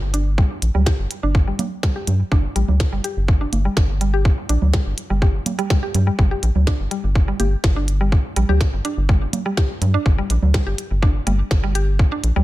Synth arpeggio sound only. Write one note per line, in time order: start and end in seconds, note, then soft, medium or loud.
0.14 0.20 D4 medium
0.38 0.47 G3 medium
0.75 0.78 G3 medium
0.86 0.90 G4 medium
1.23 1.29 D4 medium
1.48 1.56 G3 medium
1.83 1.87 G3 medium
1.96 1.99 G4 medium
2.32 2.37 D4 medium
2.56 2.65 G3 medium
2.93 2.96 G3 medium
3.04 3.08 G4 medium
3.41 3.46 D4 medium
3.65 3.73 G3 medium
4.01 4.04 G3 medium
4.14 4.17 G4 medium
4.49 4.55 D4 medium
4.73 4.82 G3 medium
5.10 5.14 G3 medium
5.22 5.25 G4 medium
5.59 5.62 G3 loud
5.70 5.79 G3 medium
5.83 5.86 G4 medium
6.07 6.12 G3 medium
6.19 6.22 G3 medium
6.31 6.34 G4 medium
6.67 6.73 D4 medium
6.91 7.00 G3 medium
7.28 7.31 G3 medium
7.40 7.43 G4 medium
7.76 7.82 D4 medium
8.01 8.09 G3 medium
8.37 8.40 G3 medium
8.49 8.52 G4 medium
8.85 8.91 D4 medium
9.09 9.18 G3 medium
9.46 9.49 G3 medium
9.57 9.61 G4 medium
9.94 10.00 D4 medium
10.18 10.26 G3 medium
10.54 10.58 G3 medium
10.67 10.70 G4 medium
11.02 11.08 D4 medium
11.27 11.36 G3 medium
11.64 11.67 G3 medium
11.75 11.79 G4 medium
12.12 12.17 D4 medium
12.36 12.44 G3 medium